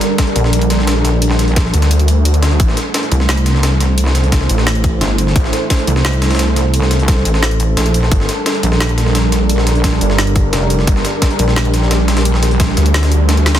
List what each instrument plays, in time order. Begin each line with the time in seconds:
Already playing: analog synth pad G3 D4 A4 A#4
0.01 snare, closed hi-hat
0.18 kick, snare, closed hi-hat
0.27 closed hi-hat
0.36 wobble bass A#1, closed hi-hat
0.44 snare
0.53 closed hi-hat
0.62 closed hi-hat
0.70 snare, closed hi-hat
0.79 snare
0.87 snare, closed hi-hat
1.05 snare, closed hi-hat
1.22 closed hi-hat
1.30 snare
1.39 snare, closed hi-hat
1.48 closed hi-hat
1.56 kick, snare, closed hi-hat
1.65 snare
1.74 detuned saw bass D2, closed hi-hat
1.82 snare, closed hi-hat
1.91 closed hi-hat
1.99 closed hi-hat
2.08 closed hi-hat
2.25 closed hi-hat
2.34 closed hi-hat
2.43 snare, closed hi-hat
2.51 closed hi-hat
2.60 detuned saw bass A1, analog synth pad A3 E4 A4 C5, kick, closed hi-hat
2.68 snare
2.77 snare, closed hi-hat
2.94 snare, closed hi-hat
3.03 closed hi-hat
3.12 wobble bass C2, closed hi-hat
3.20 snare
3.29 snare, closed hi-hat
3.37 closed hi-hat
3.46 snare, closed hi-hat
3.55 snare
3.63 snare, closed hi-hat
3.80 snare, closed hi-hat
3.98 closed hi-hat
4.06 snare
4.15 snare, closed hi-hat
4.24 closed hi-hat
4.32 kick, snare, closed hi-hat
4.41 snare
4.49 detuned saw bass A1, closed hi-hat
4.58 snare
4.67 snare, closed hi-hat
4.75 closed hi-hat
4.84 kick, closed hi-hat
5.01 wobble bass G1, snare, closed hi-hat
5.18 closed hi-hat
5.27 snare
5.36 detuned saw bass A1, kick, closed hi-hat
5.44 snare
5.53 snare, closed hi-hat
5.70 kick, snare, closed hi-hat
5.79 closed hi-hat
5.87 wobble bass C2, closed hi-hat
5.96 snare
6.05 snare, closed hi-hat
6.13 closed hi-hat
6.22 snare, closed hi-hat
6.31 snare, closed hi-hat
6.35 snare, closed hi-hat
6.39 snare, closed hi-hat
6.56 snare, closed hi-hat
6.74 closed hi-hat
6.82 snare
6.91 snare, closed hi-hat
6.99 closed hi-hat
7.08 kick, snare, closed hi-hat
7.17 snare
7.25 wobble bass A1, closed hi-hat
7.34 snare
7.43 snare, closed hi-hat
7.51 closed hi-hat
7.60 closed hi-hat
7.77 wobble bass A#1, snare, closed hi-hat
7.86 closed hi-hat
7.94 closed hi-hat
8.03 snare
8.12 detuned saw bass G1, analog synth pad G3 D4 A#4, kick, closed hi-hat
8.20 snare
8.29 snare, closed hi-hat
8.46 snare, closed hi-hat
8.55 closed hi-hat
8.63 wobble bass A#1, closed hi-hat
8.72 snare
8.80 snare, closed hi-hat
8.89 closed hi-hat
8.98 snare, closed hi-hat
9.06 snare
9.15 snare, closed hi-hat
9.32 snare, closed hi-hat
9.49 closed hi-hat
9.58 snare
9.67 snare, closed hi-hat
9.75 closed hi-hat
9.84 kick, snare, closed hi-hat
9.93 snare
10.01 detuned saw bass G1, closed hi-hat
10.10 snare
10.18 snare, closed hi-hat
10.27 closed hi-hat
10.36 kick, closed hi-hat
10.53 wobble bass F1, snare, closed hi-hat
10.70 closed hi-hat
10.79 snare
10.87 detuned saw bass G1, analog synth pad G4, kick, closed hi-hat
10.96 snare
11.05 snare, closed hi-hat
11.22 kick, snare, closed hi-hat
11.30 closed hi-hat
11.39 wobble bass A#1, closed hi-hat
11.48 snare
11.56 snare, closed hi-hat
11.65 closed hi-hat
11.74 snare, closed hi-hat
11.82 snare
11.91 snare, closed hi-hat
12.08 snare, closed hi-hat
12.17 snare, closed hi-hat
12.25 closed hi-hat
12.34 snare
12.43 snare, closed hi-hat
12.51 closed hi-hat
12.60 kick, snare, closed hi-hat
12.68 snare
12.77 detuned saw bass D2, snare, closed hi-hat
12.86 closed hi-hat
12.94 snare, closed hi-hat
13.03 snare, closed hi-hat
13.11 closed hi-hat
13.29 snare, closed hi-hat
13.37 closed hi-hat
13.46 snare, closed hi-hat
13.55 snare, closed hi-hat